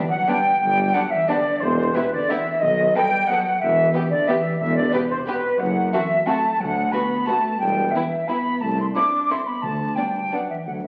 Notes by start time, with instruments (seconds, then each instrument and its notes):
Already playing: cello section E3
0.10 cello section F#3, flute section F#5
0.28 cello section G3, viola section B3, violin section D4 G4, flute section G5
0.61 tuba G1, double bass section G2, cello section G3, flute section G5
0.94 cello section F#3, viola section B3, violin section D4 G4, flute section F#5
1.11 cello section E3, flute section E5
1.28 cello section D3, viola section B3, violin section D4 G4, flute section D5
1.61 tuba E1, double bass section E2, cello section C3, flute section C5
1.94 cello section B2, viola section B3, violin section E4 G4, flute section B4
2.12 cello section D3, flute section D5
2.29 cello section E3, viola section B3, violin section E4 G4, flute section E5
2.62 tuba B1, double bass section B1, cello section D#3, flute section D#5
2.95 cello section G3, viola section B3, violin section A4 B4, flute section G5
3.29 cello section F#3, viola section B3, violin section A4 B4, flute section F#5
3.61 tuba E1, double bass section E2, cello section E3, flute section E5
3.93 viola section B3, violin section G4 B4
4.10 cello section D3, flute section D5
4.28 cello section E3, viola section B3, violin section G4 B4, flute section E5
4.60 tuba E1, double bass section E2, cello section E3, flute section E5
4.76 cello section D3, flute section D5
4.92 cello section B2, viola section B3, violin section G4 B4, flute section B4
5.10 cello section C3, flute section C5
5.27 cello section B2, viola section B3, violin section G4 B4, flute section B4
5.59 tuba F#1, double bass section F#2, cello section F#3, flute section F#5
5.92 cello section E3, viola section C4, violin section F#4 A4, flute section E5
6.26 cello section A3, viola section C4, violin section F#4 A4, flute section A5
6.59 double bass section D2, tuba D2, cello section F#3, flute section F#5
6.91 viola section B3, cello section B3, violin section F#4 B4, flute section B5
7.27 cello section A3, viola section B3, violin section F#4 B4, flute section A5
7.59 tuba E1, double bass section E2, cello section G3, flute section G5
7.92 cello section E3, viola section B3, violin section E4 B4, flute section E5
8.28 viola section B3, cello section B3, violin section E4 B4, flute section B5
8.61 double bass section C2, tuba C2, cello section A3, flute section A5
8.78 cello section C4, flute section C6
8.95 viola section C4, cello section D4, violin section E4 A4, flute section D6
9.30 cello section C4, viola section C4, violin section E4 A4, flute section C6
9.46 cello section B3, flute section B5
9.62 tuba D2, double bass section D2, timpani D3, cello section A3, flute section A5
9.96 cello section G3, viola section B3, violin section D4 D5, flute section G5
10.32 cello section F#3, viola section B3, violin section D4 D5, flute section F#5
10.50 cello section E3, flute section E5
10.66 tuba D2, double bass section D2, cello section F#3, flute section F#5
10.82 cello section E3, flute section E5